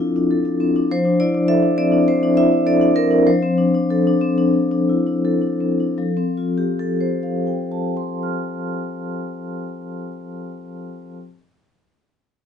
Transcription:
Already playing: F3 C4 D4 F4 A4
0.00 E4
0.16 D4
0.31 A4
0.45 D4
0.60 C4
0.76 D4
0.91 F3 C5
1.05 D4
1.20 E4 D5
1.35 D4
1.48 A4 E5
1.63 D4
1.78 C4 D5
1.92 D4
2.08 C4 C5
2.23 D4
2.37 E4 E5
2.52 D4
2.66 A4 D5
2.81 D4
2.96 C4 A#4
3.11 D4
3.27 F3 C5
3.43 C4
3.58 D4
3.74 D4
3.91 A4
4.07 D4
4.21 C4
4.38 D4
4.54 C4
4.71 D4
4.89 E4
5.07 D4
5.25 A4
5.42 D4
5.60 C4
5.80 D4
5.98 F3 A4
6.17 C4
6.37 F4
6.58 G4
6.79 A4
7.00 C5
7.23 F5
7.47 G5
7.72 A5
7.97 C6
8.23 F6

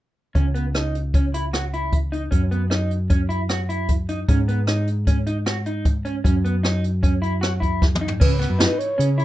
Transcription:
0.35 C#2 C#4, kick, closed hi-hat
0.54 B3, closed hi-hat
0.75 D#4, cross-stick, closed hi-hat
0.95 closed hi-hat
1.14 C#4, kick, closed hi-hat
1.34 E4, closed hi-hat
1.53 F#4, cross-stick, closed hi-hat
1.74 E4, closed hi-hat
1.92 kick, closed hi-hat
2.12 D#4, closed hi-hat
2.31 F#2 C#4, kick, closed hi-hat
2.51 B3, closed hi-hat
2.70 D#4, cross-stick, closed hi-hat
2.90 closed hi-hat
3.10 C#4, kick, closed hi-hat
3.29 E4, closed hi-hat
3.49 F#4, cross-stick, closed hi-hat
3.69 E4, closed hi-hat
3.88 kick, closed hi-hat
4.09 D#4, closed hi-hat
4.28 G#2 C#4, kick, closed hi-hat
4.48 B3, closed hi-hat
4.67 D#4, cross-stick, closed hi-hat
4.87 closed hi-hat
5.07 C#4, kick, closed hi-hat
5.27 D#4, closed hi-hat
5.46 F#4, cross-stick, closed hi-hat
5.66 D#4, closed hi-hat
5.85 kick, closed hi-hat
6.05 C#4, closed hi-hat
6.24 F#2 C#4, kick, closed hi-hat
6.45 B3, closed hi-hat
6.63 D#4, cross-stick, closed hi-hat
6.84 closed hi-hat
7.03 C#4, kick, closed hi-hat
7.22 E4, closed hi-hat
7.41 F#4, cross-stick, closed hi-hat
7.60 E4, kick, closed hi-hat
7.82 kick, snare
7.95 mid tom
8.01 D#4
8.08 floor tom
8.20 C#2 C#4 B4, kick, crash
8.39 B3, snare, closed hi-hat
8.50 F#2
8.59 D#4, snare, closed hi-hat
8.78 C#5, closed hi-hat
8.98 C#3 C#4, closed hi-hat
9.18 E4 C#5, closed hi-hat

